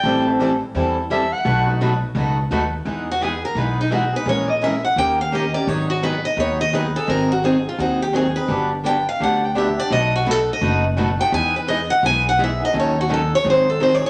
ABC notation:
X:1
M:4/4
L:1/16
Q:"Swing" 1/4=170
K:E
V:1 name="Soprano saxophone"
=g2 z8 z2 e2 f2- | f2 z12 z2 | z16 | z16 |
z16 | z16 | z16 | z16 |
z16 | z16 |]
V:2 name="Steel-string acoustic guitar"
z16 | z16 | z2 F2 G2 ^A2 B2 D2 F2 B2 | c2 d2 e2 f2 =g2 =f2 d2 =d2 |
c2 F2 B2 d2 c2 d2 B2 A2 | ^A2 F2 G2 =F2 ^F2 =G2 ^G2 B2- | B2 z2 =g2 =f2 ^f2 g2 e2 =d2 | d2 F2 A2 d4 z4 =g2 |
g2 B2 d2 f2 g2 f2 e2 d2 | c2 F2 A2 c2 ^B2 A2 (3B2 c2 c2 |]
V:3 name="Steel-string acoustic guitar"
[E,=G,=CEA]2 [CEA]2 [E,G,CEA] z3 [E,G,CEA]2 z2 [E,G,CEA] z3 | [B,,F,A,DF]2 [A,DF]2 [B,,F,A,DF] z3 [B,,F,A,DF]2 z2 [B,,F,A,DF] z3 | [E,B,DG]2 z2 [E,B,DG] z3 [E,B,DG]2 z2 [E,B,DG] z [B,DG]2 | [E,G,CG^A]2 z2 [E,G,CGA] z3 [D,^A,C=GA]2 z2 [D,A,CGA] z [CGA]2 |
[D,F,B,DG]2 z2 [D,F,B,DG] z3 [D,F,B,DG]2 z2 [D,F,B,DG] z [B,DG]2 | [D,F,^B,DG]2 z2 [D,F,B,DG] z3 [D,F,B,DG]2 z2 [D,F,B,DG] z [B,DG]2 | [=D,F,B,=D=G]2 z2 [D,F,B,DG] z3 [D,F,B,DG]2 z2 [D,F,B,DG] z [B,DG]2 | [B,,F,A,DF]2 z2 [B,,F,A,DF] z3 [B,,F,A,DF]2 z2 [B,,F,A,DF] z [A,DF]2 |
[E,B,DG]2 z2 [E,B,DG] z3 [E,B,DG]2 z2 [E,B,DG] z [B,DG]2 | [D,F,CDA]2 z2 [D,F,CDA] z3 [D,F,^B,DG]2 z2 [D,F,B,DG] z [B,DG]2 |]
V:4 name="Steel-string acoustic guitar"
[E,=G,=CEA]2 z2 [E,G,CEA] z3 [E,G,CEA]2 z2 [E,G,CEA] z3 | [B,,F,A,DFB]2 z2 [B,,F,A,DFB] z3 [B,,F,A,DFB]2 z2 [B,,F,A,DFB] z3 | [E,G,B,DG]2 z2 [E,G,B,DG] z3 [E,G,B,DG]2 z2 [E,G,B,DG] z3 | [E,G,CG^A]2 z2 [E,G,CGA] z3 [D,^A,C=GA]2 z2 [D,A,CGA] z3 |
[D,F,B,DG]2 z2 [D,F,B,DG] z3 [D,F,B,DG]2 z2 [D,F,B,DG] z3 | [D,F,^B,DG]2 z2 [D,F,B,DG] z3 [D,F,B,DG]2 z2 [D,F,B,DG] z3 | [=D,F,B,=D=G]2 z2 [D,F,B,DG] z3 [D,F,B,DG]2 z2 [D,F,B,DG] z3 | [B,,F,A,DFB]2 z2 [B,,F,A,DFB] z3 [B,,F,A,DFB]2 z2 [B,,F,A,DFB] z3 |
[E,G,B,DG]2 z2 [E,G,B,DG] z3 [E,G,B,DG]2 z2 [E,G,B,DG] z3 | [D,F,CDA]2 z2 [D,F,CDA] z3 [D,F,^B,DG]2 z2 [D,F,B,DG] z3 |]
V:5 name="Upright bass" clef=bass
A,,,8 E,,8 | B,,,8 C,,4 D,,4 | E,,8 B,,,8 | ^A,,,8 D,,8 |
G,,,8 D,,8 | G,,,8 D,,8 | =G,,,8 =D,,8 | B,,,8 F,,,8 |
E,,8 B,,,8 | D,,8 G,,,8 |]